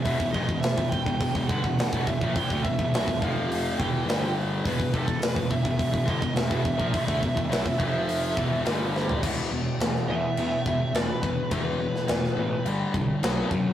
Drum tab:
CC |----------------|----------------|----------------|----------------|
HH |o---o---o---o---|o---o---o---o---|o---o---o---o---|o---o---o---o---|
SD |----o-------o---|----o-------o---|----o-------o---|----o-------o-o-|
FT |----------------|----------------|----------------|---------------o|
BD |oooo-ooooooo-ooo|oooo-oo---o-----|oooo-ooooooo-ooo|oooo-oo---o-----|

CC |x---x---x---x---|x---x---x---x---|
HH |----------------|----------------|
SD |----oo------o---|---ooo------o---|
FT |----------------|----------------|
BD |o---------o---o-|o---------o---o-|